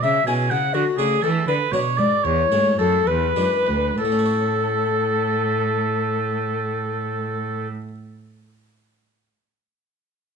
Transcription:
0.02 0.26 C#3 medium
0.02 0.25 C#3 medium
0.02 0.26 E5 loud
0.26 0.51 B2 medium
0.26 0.48 B2 medium
0.26 0.61 C#4 soft
0.26 0.62 E4 soft
0.26 0.62 G#4 medium
0.26 0.52 G#5 medium
0.26 0.34 G#5 loud
0.50 0.73 C#3 medium
0.50 0.72 C#3 medium
0.50 0.73 F#5 loud
0.50 0.76 F#5 loud
0.74 0.82 D3 medium
0.74 0.96 D3 medium
0.74 0.85 F#4 medium
0.74 1.00 F#4 loud
0.97 1.22 C#3 medium
0.97 1.21 C#3 medium
0.97 1.16 A3 medium
0.97 1.34 D4 medium
0.97 1.34 F#4 medium
0.97 1.24 G#4 medium
0.97 1.23 G#4 medium
1.22 1.46 E3 medium
1.22 1.47 A4 medium
1.22 1.29 A4 loud
1.47 1.55 D3 medium
1.47 1.71 D3 medium
1.47 1.73 B4 medium
1.47 1.54 B4 loud
1.72 1.80 B2 medium
1.72 1.96 B2 medium
1.72 2.11 D4 soft
1.72 2.11 F#4 soft
1.72 1.99 C#5 medium
1.72 1.80 C#5 loud
1.98 2.06 G#2 medium
1.98 2.22 G#2 medium
1.98 2.25 D5 medium
1.98 2.27 D5 loud
2.24 2.51 E2 medium
2.24 2.49 E2 medium
2.24 2.78 C#5 medium
2.24 2.79 C#5 loud
2.51 2.78 G#2 medium
2.51 2.76 G#2 medium
2.51 2.71 A3 soft
2.51 2.92 C#4 soft
2.51 2.92 E4 medium
2.78 3.06 F#2 medium
2.78 3.04 F#2 medium
2.78 3.08 A4 medium
2.78 3.09 A4 loud
3.07 3.36 E2 medium
3.07 3.34 E2 medium
3.07 3.97 B4 medium
3.07 3.98 B4 loud
3.36 3.64 F#2 medium
3.36 3.45 F#2 medium
3.36 3.81 G#3 soft
3.36 3.81 D4 soft
3.36 3.81 E4 soft
3.67 3.95 D2 medium
3.67 3.97 D2 medium
3.98 7.67 A2 medium
3.98 7.67 A4 medium
3.98 7.68 A4 medium
4.05 7.74 A3 medium
4.12 7.81 C#4 medium
4.19 7.88 E4 medium
4.26 7.95 C#5 medium

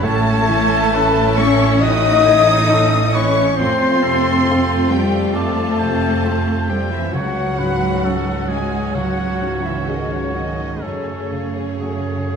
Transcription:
0.03 3.55 A1 medium
0.03 1.77 A2 medium
0.03 3.54 A3 medium
0.03 1.35 A3 loud
0.03 3.54 C#4 medium
0.03 3.59 E4 medium
0.03 1.39 A4 loud
0.03 0.96 C#5 medium
0.03 1.35 A5 loud
0.03 1.40 A5 medium
0.49 1.20 E3 medium
0.94 1.34 C#4 medium
0.94 1.34 E4 medium
0.94 1.34 A4 medium
0.94 1.40 B4 medium
1.37 1.81 C#4 medium
1.37 1.82 C#4 medium
1.37 2.09 C#4 medium
1.37 1.81 A4 medium
1.37 1.83 C#5 medium
1.37 1.81 C#6 loud
1.37 1.83 C#6 medium
1.81 3.55 A2 medium
1.81 3.14 D#4 loud
1.81 2.27 F#4 medium
1.81 3.11 D#5 loud
1.81 3.14 D#5 medium
1.81 3.16 D#6 loud
1.81 3.14 D#6 loud
2.26 2.70 E3 medium
2.26 2.72 G#4 medium
2.70 3.11 E3 soft
2.70 3.11 C#4 soft
2.70 3.16 A4 medium
2.70 3.11 A4 medium
3.12 3.58 C#4 medium
3.12 3.59 C#4 medium
3.12 3.59 C#4 soft
3.12 3.45 B4 medium
3.12 3.58 C#5 medium
3.12 3.58 C#6 medium
3.12 3.58 C#6 loud
3.56 7.14 F2 medium
3.56 5.31 F2 medium
3.56 7.10 A3 medium
3.56 4.87 C4 loud
3.56 7.10 C4 medium
3.56 4.88 C4 medium
3.56 7.10 F4 medium
3.56 4.93 C5 medium
3.56 4.05 C5 medium
3.56 4.66 C6 medium
3.56 4.89 C6 loud
4.03 4.74 C3 medium
4.03 5.08 A4 medium
4.49 4.88 C4 soft
4.49 4.88 F4 soft
4.49 4.88 A4 medium
4.90 5.34 G3 medium
4.90 5.35 G3 medium
4.90 5.62 C4 soft
4.90 5.37 G4 medium
4.90 5.35 G5 medium
4.90 5.36 G5 medium
5.34 7.11 F2 medium
5.34 6.52 A3 medium
5.34 6.69 A3 medium
5.34 6.51 A4 medium
5.34 5.81 D5 medium
5.34 6.71 A5 medium
5.34 6.69 A5 medium
5.79 6.51 C3 soft
5.79 7.14 C5 medium
6.25 6.65 C4 soft
6.25 6.65 F4 soft
6.25 6.66 A4 soft
6.68 6.91 G3 medium
6.68 7.14 C4 soft
6.68 6.92 G4 medium
6.68 6.91 G5 medium
6.68 6.95 G5 medium
6.90 7.14 E3 medium
6.90 7.14 E4 medium
6.90 7.14 E5 medium
6.90 7.15 E5 medium
7.13 8.91 C#2 medium
7.13 10.79 C#2 medium
7.13 10.79 F#3 medium
7.13 8.49 F#3 medium
7.13 8.47 F#3 medium
7.13 10.81 C#4 medium
7.13 8.50 F#4 medium
7.13 10.79 F#4 medium
7.13 7.60 C#5 medium
7.13 8.50 F#5 medium
7.13 8.52 F#5 medium
7.59 8.31 G#2 soft
7.59 8.06 B4 medium
8.04 8.45 C#4 soft
8.04 8.45 F#4 soft
8.04 8.51 A4 soft
8.48 8.94 G#3 medium
8.48 8.95 G#3 medium
8.48 9.22 C#4 soft
8.48 8.96 G#4 medium
8.48 8.94 G#5 medium
8.48 8.98 G#5 medium
8.94 10.79 C#2 soft
8.94 9.63 F#3 medium
8.94 9.64 F#3 medium
8.94 9.64 F#4 medium
8.94 10.83 C#5 medium
8.94 9.64 F#5 medium
8.94 9.66 F#5 medium
9.41 10.15 G#2 soft
9.62 9.86 E3 soft
9.62 9.88 E4 soft
9.62 9.90 E5 soft
9.62 9.87 E5 medium
9.86 10.10 D#3 soft
9.86 10.30 C#4 soft
9.86 10.12 D#4 soft
9.86 10.31 F#4 soft
9.86 10.31 G#4 soft
9.86 10.11 D#5 medium
9.86 10.14 D#5 soft
10.10 10.34 C#3 soft
10.10 10.34 C#4 soft
10.10 10.34 C#5 medium
10.10 10.35 C#5 soft
10.33 10.82 D#3 soft
10.33 10.81 D#3 soft
10.33 10.83 C#4 soft
10.33 10.83 D#4 soft
10.33 10.83 D#5 medium
10.33 10.84 D#5 soft
10.82 12.36 F#2 soft
10.82 12.36 C#3 soft
10.82 12.36 A3 soft
10.82 12.36 C#4 soft
10.82 12.36 G#4 soft
10.82 11.70 A4 soft
10.82 12.36 C#5 soft
11.32 12.09 C#3 soft
11.80 12.26 A3 soft
11.80 12.25 C#4 soft
11.80 12.25 F#4 soft
11.80 12.36 G#4 soft
12.29 12.36 C#4 soft

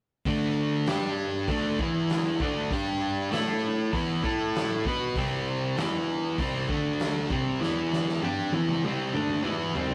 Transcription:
0.25 0.86 D3 medium
0.25 0.87 A3 loud
0.25 0.87 D4 loud
0.25 kick medium
0.25 open hi-hat medium
0.86 1.48 G3 medium
0.86 1.49 D4 medium
0.86 1.49 G4 medium
0.86 snare loud
0.86 open hi-hat medium
1.48 1.78 D3 medium
1.48 1.78 A3 medium
1.48 1.79 D4 loud
1.48 kick loud
1.48 open hi-hat medium
1.79 2.39 E3 medium
1.79 2.40 B3 medium
1.79 2.41 E4 loud
1.79 kick loud
2.10 snare loud
2.10 open hi-hat medium
2.40 2.70 D3 medium
2.40 2.71 A3 medium
2.40 2.71 D4 loud
2.40 kick loud
2.71 3.31 G3 loud
2.71 3.32 D4 medium
2.71 3.32 G4 loud
2.71 kick loud
2.71 open hi-hat medium
3.31 3.92 A3 loud
3.31 3.93 E4 loud
3.31 3.93 A4 loud
3.31 snare loud
3.31 open hi-hat medium
3.93 4.23 E3 medium
3.93 4.23 B3 loud
3.93 4.23 E4 medium
3.93 kick medium
3.93 open hi-hat medium
4.24 4.84 A3 medium
4.24 4.85 E4 medium
4.24 4.85 A4 medium
4.24 kick loud
4.55 snare loud
4.55 open hi-hat soft
4.85 5.15 B3 medium
4.85 5.16 F#4 medium
4.85 5.16 B4 loud
4.85 kick medium
5.16 5.76 C3 loud
5.16 5.77 G3 loud
5.16 5.77 C4 loud
5.16 kick loud
5.16 open hi-hat medium
5.77 6.37 E3 loud
5.77 6.38 B3 medium
5.77 6.38 E4 loud
5.77 snare loud
5.77 open hi-hat medium
6.38 6.68 C3 medium
6.38 6.69 G3 medium
6.38 6.69 C4 medium
6.38 kick loud
6.38 open hi-hat medium
6.69 7.29 D3 medium
6.69 7.29 A3 medium
6.69 7.30 D4 medium
6.69 kick medium
7.00 snare medium
7.00 open hi-hat medium
7.30 7.60 C3 medium
7.30 7.60 G3 medium
7.30 7.60 C4 loud
7.30 kick loud
7.60 8.21 E3 loud
7.60 8.21 B3 loud
7.60 8.22 E4 loud
7.60 snare medium
7.93 snare medium
8.09 snare medium
8.22 8.52 G3 medium
8.22 8.52 D4 medium
8.22 8.52 G4 loud
8.22 high tom medium
8.52 8.82 E3 loud
8.52 8.82 B3 loud
8.52 8.83 E4 loud
8.52 high tom medium
8.68 mid tom medium
8.84 9.13 C3 medium
8.84 9.13 G3 medium
8.84 9.14 C4 medium
8.84 mid tom medium
9.13 9.43 D3 medium
9.13 9.43 A3 medium
9.13 9.43 D4 medium
9.13 mid tom medium
9.30 mid tom medium
9.44 9.73 E3 loud
9.44 9.74 B3 loud
9.44 9.74 E4 loud
9.44 mid tom medium
9.74 9.94 C3 medium
9.74 9.94 G3 medium
9.74 9.94 C4 medium
9.74 floor tom medium
9.91 floor tom medium

